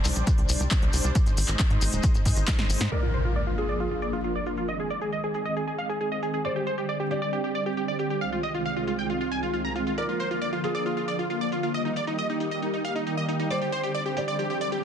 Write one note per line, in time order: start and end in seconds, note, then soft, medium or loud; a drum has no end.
0.05 0.12 C2 loud
0.05 clap soft
0.05 open hi-hat medium
0.05 shekere medium
0.15 0.23 A#1 medium
0.15 0.32 G3 medium
0.15 0.32 D4 medium
0.15 0.32 C5 medium
0.15 0.32 D5 medium
0.15 closed hi-hat medium
0.15 shekere soft
0.27 kick loud
0.27 closed hi-hat medium
0.27 shekere soft
0.38 0.45 C2 medium
0.38 closed hi-hat soft
0.49 0.56 C2 medium
0.49 0.65 G3 medium
0.49 0.65 D4 medium
0.49 0.65 C5 medium
0.49 0.65 D5 medium
0.49 open hi-hat loud
0.49 shekere medium
0.60 0.67 C2 medium
0.60 closed hi-hat medium
0.60 shekere soft
0.71 0.87 G3 medium
0.71 0.87 D4 medium
0.71 0.87 C5 medium
0.71 0.87 D5 medium
0.71 kick loud
0.71 clap loud
0.71 closed hi-hat medium
0.71 shekere soft
0.82 0.90 C2 medium
0.82 closed hi-hat soft
0.93 1.01 C2 loud
0.93 1.09 G3 medium
0.93 1.09 D4 medium
0.93 1.09 C5 medium
0.93 1.09 D5 medium
0.93 open hi-hat medium
0.93 shekere medium
1.04 1.12 C2 loud
1.04 closed hi-hat medium
1.04 shekere soft
1.15 1.31 G#3 medium
1.15 1.31 D#4 medium
1.15 1.31 C5 medium
1.15 1.31 D#5 medium
1.15 kick loud
1.15 closed hi-hat medium
1.15 shekere medium
1.26 1.34 G#1 medium
1.26 closed hi-hat soft
1.26 shekere soft
1.37 1.45 G#1 loud
1.37 open hi-hat loud
1.37 shekere medium
1.48 1.56 G#1 medium
1.48 1.64 G#3 medium
1.48 1.64 D#4 medium
1.48 1.64 C5 medium
1.48 1.64 D#5 medium
1.48 clap soft
1.48 closed hi-hat medium
1.48 shekere soft
1.59 kick loud
1.59 clap loud
1.59 closed hi-hat medium
1.59 shekere soft
1.70 1.78 G#2 medium
1.70 1.86 G#3 medium
1.70 1.86 D#4 medium
1.70 1.86 C5 medium
1.70 1.86 D#5 medium
1.70 closed hi-hat soft
1.81 1.89 G#1 loud
1.81 open hi-hat medium
1.81 shekere medium
1.92 2.00 D#1 medium
1.92 2.08 G#3 medium
1.92 2.08 D#4 medium
1.92 2.08 C5 loud
1.92 2.08 D#5 loud
1.92 closed hi-hat medium
1.92 shekere soft
2.03 kick loud
2.03 closed hi-hat medium
2.03 shekere medium
2.14 2.22 G#1 medium
2.14 closed hi-hat soft
2.14 shekere soft
2.25 2.33 G#2 medium
2.25 2.41 G#3 medium
2.25 2.41 D#4 medium
2.25 2.41 C5 medium
2.25 2.41 D#5 medium
2.25 kick medium
2.25 open hi-hat loud
2.25 shekere medium
2.37 2.44 G#1 medium
2.37 closed hi-hat medium
2.37 shekere soft
2.48 2.63 G#3 medium
2.48 2.63 D#4 medium
2.48 2.63 C5 medium
2.48 2.63 D#5 medium
2.48 kick loud
2.48 snare medium
2.48 clap loud
2.48 closed hi-hat medium
2.48 shekere medium
2.59 2.66 G#1 medium
2.59 snare medium
2.59 closed hi-hat soft
2.70 2.77 G#1 medium
2.70 2.85 G#3 medium
2.70 2.85 D#4 medium
2.70 2.85 C5 medium
2.70 2.85 D#5 medium
2.70 open hi-hat medium
2.70 shekere loud
2.81 2.88 G#2 medium
2.81 snare medium
2.81 closed hi-hat medium
2.81 shekere soft
2.92 3.07 F3 medium
2.92 3.07 A#3 medium
2.92 3.07 D4 medium
2.92 3.49 A#4 medium
2.92 3.07 A#4 medium
2.92 3.01 D5 medium
2.92 crash medium
2.92 impact medium
3.03 3.12 F4 medium
3.03 closed hi-hat soft
3.14 3.23 C5 medium
3.14 closed hi-hat medium
3.25 3.40 F3 medium
3.25 3.40 A#3 medium
3.25 3.40 D4 medium
3.25 3.34 F4 medium
3.25 3.40 A#4 medium
3.25 closed hi-hat medium
3.36 3.45 D5 medium
3.36 closed hi-hat soft
3.47 3.63 F3 medium
3.47 3.63 A#3 medium
3.47 3.63 D4 medium
3.47 3.56 F4 medium
3.47 3.63 A#4 medium
3.47 closed hi-hat soft
3.58 3.67 F4 medium
3.58 4.15 G#4 medium
3.58 closed hi-hat medium
3.69 3.85 F3 medium
3.69 3.85 A#3 medium
3.69 3.85 D4 medium
3.69 3.85 A#4 medium
3.69 3.78 D5 medium
3.69 closed hi-hat soft
3.80 3.89 F4 medium
3.80 closed hi-hat soft
3.91 4.00 F4 medium
3.91 closed hi-hat soft
4.02 4.18 F3 medium
4.02 4.18 A#3 medium
4.02 4.18 D4 medium
4.02 4.18 A#4 medium
4.02 4.11 D5 medium
4.02 closed hi-hat medium
4.13 4.22 F4 medium
4.13 closed hi-hat soft
4.24 4.40 F3 medium
4.24 4.40 A#3 medium
4.24 4.40 D4 medium
4.24 4.33 F4 medium
4.24 4.40 A#4 medium
4.24 closed hi-hat soft
4.35 4.44 D5 medium
4.35 closed hi-hat soft
4.46 4.62 F3 medium
4.46 4.62 A#3 medium
4.46 4.62 D4 medium
4.46 4.55 F4 medium
4.46 4.62 A#4 medium
4.46 closed hi-hat medium
4.57 4.66 F4 medium
4.57 closed hi-hat soft
4.68 4.84 D#3 medium
4.68 4.84 G#3 medium
4.68 4.84 C4 medium
4.68 4.84 G#4 medium
4.68 4.77 D#5 medium
4.68 closed hi-hat soft
4.79 4.89 G#4 medium
4.79 closed hi-hat soft
4.90 4.99 D5 medium
4.90 closed hi-hat medium
5.01 5.17 D#3 medium
5.01 5.17 G#3 medium
5.01 5.17 C4 medium
5.01 5.17 G#4 medium
5.01 5.11 G#4 medium
5.01 closed hi-hat soft
5.12 5.21 D#5 medium
5.12 closed hi-hat soft
5.23 5.39 D#3 medium
5.23 5.39 G#3 medium
5.23 5.39 C4 medium
5.23 5.39 G#4 medium
5.23 5.33 G#4 medium
5.23 closed hi-hat soft
5.34 5.44 G#4 medium
5.34 closed hi-hat medium
5.45 5.61 D#3 medium
5.45 5.61 G#3 medium
5.45 5.61 C4 medium
5.45 5.61 G#4 medium
5.45 5.54 D#5 medium
5.45 closed hi-hat soft
5.57 5.66 G#4 medium
5.57 closed hi-hat soft
5.68 5.77 G#4 medium
5.68 closed hi-hat soft
5.78 5.94 D#3 medium
5.78 5.94 G#3 medium
5.78 5.94 C4 medium
5.78 5.94 G#4 medium
5.78 5.88 F5 medium
5.78 closed hi-hat medium
5.89 5.99 G#4 medium
5.89 closed hi-hat soft
6.01 6.16 D#3 medium
6.01 6.16 G#3 medium
6.01 6.16 C4 medium
6.01 6.16 G#4 medium
6.01 6.10 G#4 medium
6.01 closed hi-hat soft
6.12 6.21 D#5 medium
6.12 closed hi-hat soft
6.23 6.38 D#3 medium
6.23 6.38 G#3 medium
6.23 6.38 C4 medium
6.23 6.38 G#4 medium
6.23 6.32 G#4 medium
6.23 closed hi-hat medium
6.34 6.43 G#4 medium
6.34 closed hi-hat soft
6.44 6.60 D3 medium
6.44 6.60 G3 medium
6.44 6.60 C4 medium
6.44 6.60 G4 medium
6.44 7.02 C5 medium
6.44 6.54 D5 loud
6.44 closed hi-hat soft
6.56 6.65 G4 medium
6.56 closed hi-hat soft
6.67 6.76 C5 medium
6.67 closed hi-hat medium
6.78 6.93 D3 medium
6.78 6.93 G3 medium
6.78 6.93 C4 medium
6.78 6.87 G4 medium
6.78 6.93 G4 medium
6.78 closed hi-hat soft
6.89 6.98 D5 medium
6.89 closed hi-hat soft
7.00 7.15 D3 medium
7.00 7.15 G3 medium
7.00 7.15 C4 medium
7.00 7.15 G4 medium
7.00 7.09 G4 medium
7.00 closed hi-hat soft
7.11 7.20 G4 medium
7.11 7.68 D5 medium
7.11 closed hi-hat medium
7.22 7.37 D3 medium
7.22 7.37 G3 medium
7.22 7.37 C4 medium
7.22 7.37 G4 medium
7.22 7.31 D5 medium
7.22 closed hi-hat soft
7.33 7.42 G4 medium
7.33 closed hi-hat soft
7.44 7.53 G4 medium
7.44 closed hi-hat soft
7.55 7.70 D3 medium
7.55 7.70 G3 medium
7.55 7.70 C4 medium
7.55 7.70 G4 medium
7.55 7.64 D5 medium
7.55 closed hi-hat medium
7.66 7.75 G4 medium
7.66 closed hi-hat soft
7.77 7.92 D3 medium
7.77 7.92 G3 medium
7.77 7.92 C4 medium
7.77 7.92 G4 medium
7.77 7.86 G4 medium
7.77 closed hi-hat soft
7.88 7.97 D5 medium
7.88 closed hi-hat soft
7.99 8.15 D3 medium
7.99 8.15 G3 medium
7.99 8.15 C4 medium
7.99 8.15 G4 medium
7.99 8.08 G4 medium
7.99 closed hi-hat medium
8.10 8.19 G4 medium
8.10 closed hi-hat soft
8.21 8.37 C2 medium
8.21 8.37 D#3 medium
8.21 8.37 G#3 medium
8.21 8.37 C4 medium
8.21 8.37 F4 medium
8.21 8.30 F5 medium
8.21 closed hi-hat soft
8.32 8.41 F4 medium
8.32 closed hi-hat soft
8.43 8.52 D#5 medium
8.43 closed hi-hat medium
8.54 8.70 C2 medium
8.54 8.70 D#3 medium
8.54 8.70 G#3 medium
8.54 8.70 C4 medium
8.54 8.70 F4 medium
8.54 8.63 F4 medium
8.54 closed hi-hat soft
8.65 8.74 F5 medium
8.65 closed hi-hat soft
8.76 8.92 C2 medium
8.76 8.92 D#3 medium
8.76 8.92 G#3 medium
8.76 8.92 C4 medium
8.76 8.92 F4 medium
8.76 8.85 F4 medium
8.76 closed hi-hat soft
8.87 8.97 F4 medium
8.87 closed hi-hat medium
8.98 9.14 C2 medium
8.98 9.14 D#3 medium
8.98 9.14 G#3 medium
8.98 9.14 C4 medium
8.98 9.14 F4 medium
8.98 9.08 G5 medium
8.98 closed hi-hat soft
9.10 9.19 F4 medium
9.10 closed hi-hat soft
9.21 9.30 F4 medium
9.21 closed hi-hat soft
9.31 9.47 C2 medium
9.31 9.47 D#3 medium
9.31 9.47 G#3 medium
9.31 9.47 C4 medium
9.31 9.47 F4 medium
9.31 9.41 G#5 medium
9.31 closed hi-hat medium
9.43 9.52 F4 medium
9.43 closed hi-hat soft
9.54 9.69 C2 medium
9.54 9.69 D#3 medium
9.54 9.69 G#3 medium
9.54 9.69 C4 medium
9.54 9.63 F4 medium
9.54 9.69 F4 medium
9.54 closed hi-hat soft
9.65 9.74 A#5 medium
9.65 closed hi-hat soft
9.76 9.91 C2 medium
9.76 9.91 D#3 medium
9.76 9.91 G#3 medium
9.76 9.91 C4 medium
9.76 9.91 F4 medium
9.76 9.85 F4 medium
9.76 closed hi-hat medium
9.87 9.96 F4 medium
9.87 closed hi-hat soft
9.98 10.13 D3 medium
9.98 10.13 F3 medium
9.98 10.13 A#3 medium
9.98 10.13 F4 medium
9.98 10.55 A#4 medium
9.98 10.07 D5 loud
9.98 closed hi-hat soft
10.09 10.18 F4 medium
10.09 closed hi-hat soft
10.20 10.29 C5 medium
10.20 closed hi-hat medium
10.31 10.46 D3 medium
10.31 10.46 F3 medium
10.31 10.46 A#3 medium
10.31 10.46 F4 medium
10.31 10.40 F4 medium
10.31 closed hi-hat soft
10.42 10.51 D5 medium
10.42 closed hi-hat soft
10.53 10.68 D3 medium
10.53 10.68 F3 medium
10.53 10.68 A#3 medium
10.53 10.62 F4 medium
10.53 10.68 F4 medium
10.53 closed hi-hat soft
10.64 10.73 F4 medium
10.64 11.21 G#4 medium
10.64 closed hi-hat medium
10.75 10.90 D3 medium
10.75 10.90 F3 medium
10.75 10.90 A#3 medium
10.75 10.90 F4 medium
10.75 10.84 D5 medium
10.75 closed hi-hat soft
10.86 10.95 F4 medium
10.86 closed hi-hat soft
10.97 11.06 F4 medium
10.97 closed hi-hat soft
11.08 11.23 D3 medium
11.08 11.24 F3 medium
11.08 11.24 A#3 medium
11.08 11.24 F4 medium
11.08 11.17 D5 medium
11.08 closed hi-hat medium
11.19 11.28 F4 medium
11.19 closed hi-hat soft
11.30 11.46 D3 medium
11.30 11.46 F3 medium
11.30 11.46 A#3 medium
11.30 11.39 F4 medium
11.30 11.46 F4 medium
11.30 closed hi-hat soft
11.41 11.50 D5 medium
11.41 closed hi-hat soft
11.52 11.68 D3 medium
11.52 11.68 F3 medium
11.52 11.68 A#3 medium
11.52 11.68 F4 medium
11.52 11.61 F4 medium
11.52 closed hi-hat medium
11.63 11.72 F4 medium
11.63 closed hi-hat soft
11.74 11.90 D#3 medium
11.74 11.90 G3 medium
11.74 11.90 A#3 medium
11.74 11.90 G4 medium
11.74 11.83 D#5 medium
11.74 closed hi-hat soft
11.85 11.94 D#4 medium
11.85 closed hi-hat soft
11.96 12.05 D5 medium
11.96 closed hi-hat medium
12.07 12.23 D#3 medium
12.07 12.23 G3 medium
12.07 12.23 A#3 medium
12.07 12.16 D#4 medium
12.07 12.23 G4 medium
12.07 closed hi-hat soft
12.18 12.27 D#5 medium
12.18 closed hi-hat soft
12.29 12.45 D#3 medium
12.29 12.45 G3 medium
12.29 12.45 A#3 medium
12.29 12.38 D#4 medium
12.29 12.45 G4 medium
12.29 closed hi-hat soft
12.40 12.49 D#4 medium
12.40 closed hi-hat medium
12.51 12.67 D#3 medium
12.51 12.67 G3 medium
12.51 12.67 A#3 medium
12.51 12.67 G4 medium
12.51 12.60 D#5 medium
12.51 closed hi-hat soft
12.62 12.71 D#4 medium
12.62 closed hi-hat soft
12.73 12.83 D#4 medium
12.73 closed hi-hat soft
12.85 13.00 D#3 medium
12.85 13.00 G3 medium
12.85 13.00 A#3 medium
12.85 13.00 G4 medium
12.85 12.94 F5 medium
12.85 closed hi-hat medium
12.95 13.04 D#4 medium
12.95 closed hi-hat soft
13.07 13.22 D#3 medium
13.07 13.22 G3 medium
13.07 13.22 A#3 medium
13.07 13.16 D#4 medium
13.07 13.22 G4 medium
13.07 closed hi-hat soft
13.17 13.27 D#5 medium
13.17 closed hi-hat soft
13.29 13.44 D#3 medium
13.29 13.44 G3 medium
13.29 13.44 A#3 medium
13.29 13.38 D#4 medium
13.29 13.44 G4 medium
13.29 closed hi-hat medium
13.40 13.49 D#4 medium
13.40 closed hi-hat soft
13.50 13.66 D3 medium
13.50 13.66 G3 medium
13.50 13.66 C4 medium
13.50 13.66 G4 medium
13.50 14.08 C5 medium
13.50 13.60 D5 loud
13.50 closed hi-hat soft
13.50 riser medium
13.61 13.71 G4 medium
13.61 closed hi-hat soft
13.72 13.82 C5 medium
13.72 closed hi-hat medium
13.83 13.99 D3 medium
13.83 13.99 G3 medium
13.83 13.99 C4 medium
13.83 13.93 G4 medium
13.83 13.99 G4 medium
13.83 closed hi-hat medium
13.95 14.04 D5 medium
13.95 closed hi-hat soft
14.06 14.21 D3 medium
14.06 14.21 G3 medium
14.06 14.21 C4 medium
14.06 14.15 G4 medium
14.06 14.21 G4 medium
14.06 closed hi-hat soft
14.17 14.26 G4 medium
14.17 14.74 D5 medium
14.17 closed hi-hat medium
14.28 14.43 D3 medium
14.28 14.43 G3 medium
14.28 14.43 C4 medium
14.28 14.43 G4 medium
14.28 14.37 D5 medium
14.28 closed hi-hat soft
14.39 14.48 G4 medium
14.39 closed hi-hat medium
14.50 14.59 G4 medium
14.50 closed hi-hat soft
14.61 14.76 D3 medium
14.61 14.76 G3 medium
14.61 14.76 C4 medium
14.61 14.76 G4 medium
14.61 14.70 D5 medium
14.61 closed hi-hat medium
14.72 14.81 G4 medium
14.72 closed hi-hat medium